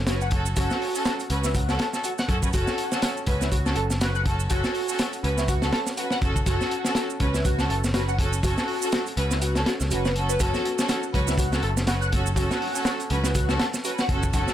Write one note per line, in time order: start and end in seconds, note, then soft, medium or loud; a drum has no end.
0.00 0.54 F#1 medium
0.07 0.29 C#4 medium
0.07 0.29 F#4 medium
0.07 0.14 F#4 medium
0.07 0.29 B4 medium
0.07 snare loud
0.07 closed hi-hat medium
0.07 shaker soft
0.21 0.27 F#5 loud
0.21 shaker soft
0.31 0.51 C#4 medium
0.31 0.51 F#4 medium
0.31 0.51 A4 medium
0.31 kick medium
0.31 closed hi-hat medium
0.46 shaker medium
0.56 0.69 F#1 loud
0.56 0.92 C#4 medium
0.56 0.92 F#4 medium
0.56 1.05 F#4 medium
0.56 0.92 A4 loud
0.56 kick loud
0.56 closed hi-hat medium
0.56 shaker soft
0.70 snare soft
0.70 shaker soft
0.82 open hi-hat medium
0.95 1.13 C#4 medium
0.95 1.13 F#4 medium
0.95 1.13 A4 medium
0.95 shaker medium
1.05 1.13 F#4 medium
1.05 snare loud
1.05 closed hi-hat medium
1.05 shaker soft
1.20 closed hi-hat soft
1.20 shaker soft
1.30 1.77 C#2 medium
1.30 1.43 C#4 medium
1.30 1.43 F#4 medium
1.30 1.43 B4 loud
1.30 closed hi-hat medium
1.44 1.50 E4 medium
1.44 snare soft
1.44 shaker medium
1.55 1.79 F#4 medium
1.55 kick loud
1.55 closed hi-hat medium
1.55 shaker soft
1.69 1.79 C#4 medium
1.69 1.79 F#4 medium
1.69 1.79 A4 medium
1.69 snare medium
1.69 shaker soft
1.79 1.87 A4 loud
1.79 snare loud
1.79 closed hi-hat medium
1.93 2.03 C#4 medium
1.93 2.03 F#4 medium
1.93 2.03 A4 medium
1.93 snare soft
1.93 shaker medium
2.04 2.11 F#4 medium
2.04 closed hi-hat medium
2.04 shaker soft
2.18 2.23 F#5 loud
2.18 snare medium
2.18 shaker soft
2.29 2.50 F#2 medium
2.29 2.41 C#4 medium
2.29 2.41 F#4 medium
2.29 2.41 A4 loud
2.29 kick medium
2.29 closed hi-hat medium
2.43 2.52 C#4 medium
2.43 2.52 F#4 medium
2.43 2.52 B4 medium
2.43 kick medium
2.43 shaker medium
2.53 2.65 F#1 medium
2.53 2.89 C#4 medium
2.53 2.88 F#4 medium
2.53 3.01 F#4 medium
2.53 2.89 A4 loud
2.53 kick loud
2.53 closed hi-hat medium
2.53 shaker soft
2.67 snare soft
2.67 shaker soft
2.78 closed hi-hat medium
2.92 3.09 C#4 medium
2.92 3.09 F#4 medium
2.92 3.09 A4 medium
2.92 snare medium
2.92 shaker medium
3.02 3.09 F#4 loud
3.02 snare loud
3.02 closed hi-hat medium
3.02 shaker soft
3.17 shaker soft
3.26 3.73 C#2 medium
3.26 3.40 C#4 medium
3.26 3.40 F#4 medium
3.26 3.40 B4 loud
3.26 kick medium
3.26 closed hi-hat medium
3.41 3.46 E4 medium
3.41 snare soft
3.41 shaker medium
3.51 3.75 F#4 medium
3.51 kick loud
3.51 closed hi-hat medium
3.51 shaker soft
3.65 3.75 C#4 medium
3.65 3.75 F#4 medium
3.65 3.75 A4 loud
3.65 snare medium
3.65 shaker soft
3.76 4.47 F#1 medium
3.76 3.83 A4 medium
3.76 closed hi-hat medium
3.90 snare soft
3.90 shaker medium
4.01 4.23 C#4 medium
4.01 4.23 F#4 medium
4.01 4.08 F#4 medium
4.01 4.23 B4 medium
4.01 snare loud
4.01 closed hi-hat medium
4.01 shaker soft
4.15 4.20 F#5 loud
4.15 shaker soft
4.25 4.45 C#4 medium
4.25 4.45 F#4 medium
4.25 4.45 A4 medium
4.25 kick medium
4.25 closed hi-hat medium
4.40 shaker medium
4.49 4.62 F#1 loud
4.49 4.85 C#4 medium
4.49 4.98 F#4 medium
4.49 4.85 F#4 medium
4.49 4.85 A4 loud
4.49 kick medium
4.49 closed hi-hat medium
4.49 shaker soft
4.64 snare medium
4.64 shaker soft
4.74 open hi-hat medium
4.88 5.06 C#4 medium
4.88 5.06 F#4 medium
4.88 5.06 A4 loud
4.88 shaker medium
4.99 5.06 F#4 loud
4.99 snare medium
4.99 closed hi-hat medium
4.99 shaker soft
5.13 closed hi-hat soft
5.13 shaker soft
5.23 5.70 C#2 medium
5.23 5.37 C#4 medium
5.23 5.37 F#4 medium
5.23 5.37 B4 loud
5.23 closed hi-hat medium
5.38 5.43 E4 medium
5.38 snare soft
5.38 shaker medium
5.48 5.72 F#4 medium
5.48 kick loud
5.48 closed hi-hat medium
5.48 shaker soft
5.62 5.72 C#4 medium
5.62 5.72 F#4 medium
5.62 5.72 A4 loud
5.62 snare medium
5.62 shaker soft
5.72 5.80 A4 loud
5.72 snare loud
5.72 closed hi-hat medium
5.87 snare soft
5.87 shaker medium
5.97 6.19 C#4 medium
5.97 6.19 F#4 medium
5.97 6.04 F#4 medium
5.97 6.19 B4 medium
5.97 closed hi-hat medium
5.97 shaker soft
6.10 6.17 F#5 loud
6.10 snare medium
6.10 shaker soft
6.22 6.43 F#1 medium
6.22 6.41 C#4 medium
6.22 6.41 F#4 medium
6.22 6.41 A4 loud
6.22 kick loud
6.22 closed hi-hat medium
6.36 kick medium
6.36 shaker medium
6.46 6.58 F#1 medium
6.46 6.82 C#4 medium
6.46 6.82 F#4 medium
6.46 6.95 F#4 medium
6.46 6.82 A4 loud
6.46 kick loud
6.46 closed hi-hat medium
6.46 shaker soft
6.61 snare soft
6.61 shaker soft
6.71 closed hi-hat medium
6.85 7.03 C#4 medium
6.85 7.03 F#4 medium
6.85 7.03 A4 loud
6.85 snare medium
6.85 shaker medium
6.95 7.03 F#4 medium
6.95 snare loud
6.95 closed hi-hat medium
6.95 shaker soft
7.10 shaker soft
7.20 7.67 C#2 medium
7.20 7.34 C#4 medium
7.20 7.34 F#4 medium
7.20 7.34 B4 loud
7.20 kick medium
7.20 closed hi-hat medium
7.34 7.40 E4 medium
7.34 snare soft
7.34 shaker medium
7.45 7.69 F#4 medium
7.45 kick loud
7.45 closed hi-hat medium
7.45 shaker soft
7.59 7.69 C#4 medium
7.59 7.69 F#4 medium
7.59 7.69 A4 medium
7.59 snare medium
7.59 shaker soft
7.69 8.40 F#1 medium
7.69 7.76 A4 loud
7.69 closed hi-hat medium
7.84 snare medium
7.84 shaker medium
7.94 8.16 C#4 medium
7.94 8.16 F#4 medium
7.94 8.01 F#4 medium
7.94 8.16 B4 medium
7.94 snare loud
7.94 closed hi-hat medium
7.94 shaker soft
8.08 8.13 F#5 loud
8.08 shaker soft
8.19 8.38 C#4 medium
8.19 8.38 F#4 medium
8.19 8.38 A4 loud
8.19 kick medium
8.19 closed hi-hat medium
8.33 shaker medium
8.43 8.55 F#1 medium
8.43 8.79 C#4 medium
8.43 8.79 F#4 medium
8.43 8.92 F#4 medium
8.43 8.79 A4 loud
8.43 kick loud
8.43 closed hi-hat medium
8.43 shaker soft
8.58 snare medium
8.58 shaker soft
8.68 open hi-hat medium
8.82 9.00 C#4 medium
8.82 9.00 F#4 medium
8.82 9.00 A4 loud
8.82 shaker medium
8.92 8.99 F#4 loud
8.92 snare loud
8.92 closed hi-hat medium
8.92 shaker soft
9.06 closed hi-hat soft
9.06 shaker soft
9.17 9.64 C#2 medium
9.17 9.30 C#4 medium
9.17 9.30 F#4 medium
9.17 9.30 B4 loud
9.17 closed hi-hat medium
9.31 9.37 E4 medium
9.31 snare soft
9.31 shaker medium
9.42 9.55 F#4 medium
9.42 closed hi-hat medium
9.42 shaker medium
9.55 9.66 C#4 medium
9.55 9.66 F#4 medium
9.55 9.66 A4 loud
9.55 snare medium
9.55 shaker soft
9.66 9.73 F#4 medium
9.66 snare loud
9.66 closed hi-hat medium
9.80 9.92 C#2 medium
9.80 snare soft
9.80 shaker medium
9.91 10.37 F#1 medium
9.91 10.13 C#4 medium
9.91 10.02 F#4 medium
9.91 10.13 F#4 medium
9.91 10.13 B4 medium
9.91 closed hi-hat medium
9.91 shaker soft
10.05 10.10 B4 medium
10.05 snare medium
10.05 shaker soft
10.15 10.35 C#4 medium
10.15 10.35 F#4 medium
10.15 10.35 A4 medium
10.15 closed hi-hat medium
10.29 10.39 B4 medium
10.29 shaker medium
10.40 10.52 F#1 loud
10.40 10.75 C#4 medium
10.40 10.88 F#4 medium
10.40 10.75 F#4 medium
10.40 10.75 A4 loud
10.40 kick loud
10.40 closed hi-hat medium
10.40 shaker medium
10.54 snare soft
10.54 high bongo medium
10.54 high conga medium
10.54 shaker soft
10.65 closed hi-hat medium
10.79 10.96 C#4 medium
10.79 10.96 F#4 medium
10.79 10.96 A4 loud
10.79 snare medium
10.79 shaker medium
10.89 10.96 F#4 loud
10.89 snare medium
10.89 closed hi-hat medium
10.89 high bongo medium
10.89 high conga medium
10.89 shaker medium
11.03 shaker soft
11.13 11.60 C#2 medium
11.13 11.27 C#4 medium
11.13 11.27 F#4 medium
11.13 11.27 B4 loud
11.13 kick medium
11.13 closed hi-hat medium
11.13 low conga medium
11.27 11.33 E4 medium
11.27 snare soft
11.27 high conga medium
11.27 shaker medium
11.38 11.62 F#4 medium
11.38 kick loud
11.38 closed hi-hat medium
11.38 high bongo medium
11.38 shaker medium
11.52 11.62 C#4 medium
11.52 11.62 F#4 medium
11.52 11.62 A4 loud
11.52 snare soft
11.52 shaker soft
11.63 12.34 F#1 medium
11.63 11.70 A4 loud
11.63 closed hi-hat medium
11.63 high conga medium
11.77 snare soft
11.77 high bongo medium
11.77 shaker medium
11.87 12.10 C#4 medium
11.87 11.94 F#4 medium
11.87 12.10 F#4 medium
11.87 12.10 B4 medium
11.87 snare loud
11.87 closed hi-hat medium
11.87 shaker medium
12.01 12.07 F#5 loud
12.01 shaker soft
12.12 12.32 C#4 medium
12.12 12.32 F#4 medium
12.12 12.32 A4 loud
12.12 kick medium
12.12 closed hi-hat medium
12.12 high conga loud
12.26 high bongo soft
12.26 shaker medium
12.36 12.48 F#1 loud
12.36 12.72 C#4 loud
12.36 12.85 F#4 medium
12.36 12.72 F#4 medium
12.36 12.72 A4 loud
12.36 kick loud
12.36 closed hi-hat medium
12.36 shaker medium
12.51 snare medium
12.51 high conga medium
12.51 shaker soft
12.62 open hi-hat medium
12.62 high bongo medium
12.75 12.93 C#4 medium
12.75 12.93 F#4 medium
12.75 12.93 A4 loud
12.75 shaker medium
12.85 12.93 F#4 medium
12.85 snare loud
12.85 closed hi-hat medium
12.85 high conga medium
12.85 shaker medium
13.00 closed hi-hat soft
13.00 shaker soft
13.10 13.57 C#2 medium
13.10 13.24 C#4 medium
13.10 13.24 F#4 medium
13.10 13.24 B4 loud
13.10 closed hi-hat medium
13.10 high bongo medium
13.10 low conga medium
13.24 13.30 E4 medium
13.24 snare soft
13.24 high conga medium
13.24 shaker medium
13.35 13.59 F#4 medium
13.35 kick loud
13.35 closed hi-hat medium
13.35 shaker medium
13.49 13.59 C#4 medium
13.49 13.59 F#4 medium
13.49 13.59 A4 loud
13.49 snare medium
13.49 high bongo medium
13.49 shaker soft
13.59 13.67 A4 loud
13.59 snare loud
13.59 closed hi-hat medium
13.59 high conga medium
13.74 snare soft
13.74 shaker medium
13.84 14.06 C#4 medium
13.84 14.06 F#4 medium
13.84 13.91 F#4 medium
13.84 14.06 B4 medium
13.84 closed hi-hat medium
13.84 shaker soft
13.98 14.04 F#5 loud
13.98 snare medium
13.98 high bongo soft
13.98 shaker soft
14.09 14.30 F#1 medium
14.09 14.28 C#4 medium
14.09 14.28 F#4 medium
14.09 14.28 A4 loud
14.09 kick medium
14.09 closed hi-hat medium
14.09 high conga loud
14.23 kick medium
14.23 shaker medium
14.33 14.45 F#1 loud
14.33 14.54 C#4 loud
14.33 14.54 F#4 medium
14.33 14.54 A4 loud
14.33 kick loud
14.33 closed hi-hat medium
14.33 high bongo medium
14.33 shaker medium
14.48 snare soft
14.48 high conga medium
14.48 shaker soft